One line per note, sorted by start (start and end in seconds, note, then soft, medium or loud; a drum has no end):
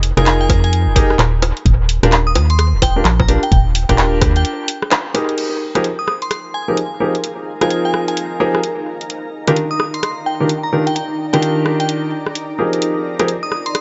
0.00 0.13 F1 loud
0.00 open hi-hat loud
0.17 0.51 F1 medium
0.17 0.94 D#4 medium
0.17 0.94 F4 medium
0.17 0.94 G#4 medium
0.17 0.94 A#4 loud
0.17 0.23 G#5 medium
0.17 cross-stick medium
0.17 closed hi-hat medium
0.26 0.36 G#5 medium
0.26 clap loud
0.26 closed hi-hat medium
0.41 0.50 G#5 medium
0.49 0.88 F2 medium
0.49 kick loud
0.49 open hi-hat loud
0.49 high bongo medium
0.64 1.10 G#5 medium
0.64 closed hi-hat soft
0.73 closed hi-hat medium
0.87 1.17 F1 loud
0.96 1.12 D#4 loud
0.96 1.12 G4 medium
0.96 1.12 G#4 medium
0.96 1.12 A#4 loud
0.96 kick loud
0.96 open hi-hat loud
1.10 cross-stick medium
1.19 1.53 D#1 loud
1.19 clap loud
1.19 closed hi-hat medium
1.19 high bongo medium
1.42 open hi-hat medium
1.42 high bongo medium
1.57 closed hi-hat soft
1.66 1.99 D#1 loud
1.66 kick loud
1.66 closed hi-hat medium
1.89 open hi-hat loud
2.03 2.37 D#1 medium
2.03 2.10 D4 medium
2.03 2.10 F4 medium
2.03 2.10 G4 medium
2.03 2.10 A#4 loud
2.03 cross-stick medium
2.03 closed hi-hat medium
2.12 clap loud
2.12 closed hi-hat medium
2.27 2.32 D#6 medium
2.35 2.74 D#2 loud
2.35 2.45 D#6 medium
2.35 open hi-hat loud
2.35 high bongo medium
2.50 2.56 C6 medium
2.50 closed hi-hat soft
2.59 2.68 C6 medium
2.59 cross-stick medium
2.59 closed hi-hat medium
2.73 3.03 D#1 loud
2.82 2.97 G5 medium
2.82 kick medium
2.82 open hi-hat loud
2.82 high bongo medium
2.96 3.03 D4 medium
2.96 3.03 F4 medium
2.96 3.03 G4 medium
2.96 3.03 A#4 medium
3.05 3.39 A#1 loud
3.05 clap loud
3.05 closed hi-hat medium
3.20 3.29 A#5 medium
3.20 kick loud
3.20 high bongo medium
3.28 3.40 D4 medium
3.28 3.40 F4 medium
3.28 3.40 G4 medium
3.28 3.40 A#4 medium
3.28 open hi-hat medium
3.43 3.49 G5 medium
3.43 closed hi-hat soft
3.52 3.85 D#1 loud
3.52 3.61 G5 medium
3.52 kick loud
3.52 closed hi-hat medium
3.75 open hi-hat loud
3.89 4.23 D#1 medium
3.89 4.66 D4 medium
3.89 4.66 F4 medium
3.89 4.66 G4 medium
3.89 4.66 A#4 loud
3.89 3.95 G5 medium
3.89 kick medium
3.89 cross-stick medium
3.89 closed hi-hat medium
3.98 4.08 G5 medium
3.98 clap loud
3.98 closed hi-hat medium
4.21 4.45 D#2 loud
4.21 kick loud
4.21 cross-stick medium
4.21 open hi-hat loud
4.21 high bongo medium
4.36 4.68 G5 medium
4.36 closed hi-hat soft
4.45 closed hi-hat medium
4.68 open hi-hat loud
4.82 cross-stick medium
4.91 clap loud
4.91 closed hi-hat medium
4.91 high bongo medium
5.14 5.61 D#4 medium
5.14 5.61 G4 medium
5.14 5.61 G#4 medium
5.14 5.61 A#4 medium
5.14 open hi-hat loud
5.14 high bongo medium
5.29 closed hi-hat soft
5.37 13.81 D#4 medium
5.37 8.86 G#4 medium
5.37 closed hi-hat medium
5.37 crash medium
5.54 10.01 A#4 medium
5.75 5.82 F3 medium
5.75 5.82 C4 medium
5.75 5.82 D#4 medium
5.75 5.82 G4 medium
5.75 5.82 G#4 medium
5.75 5.82 A#4 loud
5.75 13.81 A#5 medium
5.75 cross-stick medium
5.75 closed hi-hat medium
5.83 10.07 F5 medium
5.83 closed hi-hat medium
5.99 6.04 D#6 medium
6.08 6.17 D#6 medium
6.08 cross-stick medium
6.22 6.28 C6 medium
6.22 closed hi-hat soft
6.31 6.40 C6 medium
6.31 cross-stick medium
6.31 closed hi-hat medium
6.54 6.69 G#5 medium
6.68 6.75 F3 medium
6.68 6.75 C4 medium
6.68 6.75 D#4 medium
6.68 6.75 G4 medium
6.68 6.75 G#4 medium
6.68 6.75 A#4 medium
6.77 closed hi-hat medium
7.00 7.12 F3 medium
7.00 7.12 C4 medium
7.00 7.12 D#4 medium
7.00 7.12 G4 medium
7.00 7.12 G#4 medium
7.00 7.12 A#4 medium
7.15 closed hi-hat soft
7.24 closed hi-hat medium
7.61 8.38 F3 medium
7.61 8.38 C4 medium
7.61 8.38 D#4 medium
7.61 8.38 F4 medium
7.61 8.38 G#4 medium
7.61 8.38 A#4 medium
7.61 7.67 G#5 medium
7.61 cross-stick medium
7.61 closed hi-hat medium
7.70 7.80 G#5 medium
7.70 closed hi-hat medium
7.85 7.94 G#5 medium
7.94 cross-stick medium
8.08 8.55 G#5 medium
8.08 closed hi-hat soft
8.17 closed hi-hat medium
8.40 8.57 F3 loud
8.40 8.57 C4 medium
8.40 8.57 D#4 medium
8.40 8.57 G4 medium
8.40 8.57 G#4 medium
8.40 8.57 A#4 loud
8.55 cross-stick medium
8.63 closed hi-hat medium
9.01 closed hi-hat soft
9.10 closed hi-hat medium
9.23 13.81 D5 medium
9.47 9.55 D#3 medium
9.47 9.55 D4 medium
9.47 9.55 F4 medium
9.47 9.54 G4 medium
9.47 9.55 A#4 loud
9.47 cross-stick medium
9.47 closed hi-hat medium
9.56 closed hi-hat medium
9.71 9.76 D#6 medium
9.80 9.89 D#6 medium
9.80 cross-stick medium
9.94 10.00 C6 medium
9.94 closed hi-hat soft
10.03 10.12 C6 medium
10.03 cross-stick medium
10.03 closed hi-hat medium
10.26 10.41 G5 medium
10.40 10.47 D#3 medium
10.40 10.47 D4 medium
10.40 10.47 F4 medium
10.40 10.47 G4 medium
10.40 10.47 A#4 medium
10.49 closed hi-hat medium
10.63 10.73 A#5 medium
10.73 10.84 D#3 medium
10.73 10.84 D4 medium
10.73 10.84 F4 medium
10.73 10.84 G4 medium
10.73 10.84 A#4 medium
10.87 10.93 G5 medium
10.87 closed hi-hat soft
10.95 11.05 G5 medium
10.95 closed hi-hat medium
11.33 12.10 D#3 medium
11.33 12.10 D4 medium
11.33 12.10 F4 medium
11.33 12.10 G4 medium
11.33 12.10 A#4 medium
11.33 11.39 G5 medium
11.33 cross-stick medium
11.33 closed hi-hat medium
11.42 11.52 G5 medium
11.42 closed hi-hat medium
11.66 cross-stick medium
11.80 12.12 G5 medium
11.80 closed hi-hat soft
11.89 closed hi-hat medium
12.26 cross-stick medium
12.35 closed hi-hat medium
12.59 13.16 F3 medium
12.59 13.16 C4 medium
12.59 13.16 D#4 medium
12.59 13.16 G4 medium
12.59 13.16 G#4 medium
12.59 13.16 A#4 medium
12.73 closed hi-hat soft
12.82 closed hi-hat medium
12.97 13.81 G#4 medium
13.19 13.27 F3 medium
13.19 13.27 C4 medium
13.19 13.27 D#4 medium
13.19 13.27 G4 medium
13.19 13.27 G#4 medium
13.19 13.27 A#4 loud
13.19 cross-stick medium
13.19 closed hi-hat medium
13.25 13.81 A#4 medium
13.25 13.81 F5 medium
13.25 closed hi-hat medium
13.43 13.49 D#6 medium
13.52 13.61 D#6 medium
13.52 cross-stick medium
13.66 13.72 C6 medium
13.66 closed hi-hat soft
13.75 13.81 C6 medium
13.75 cross-stick medium
13.75 closed hi-hat medium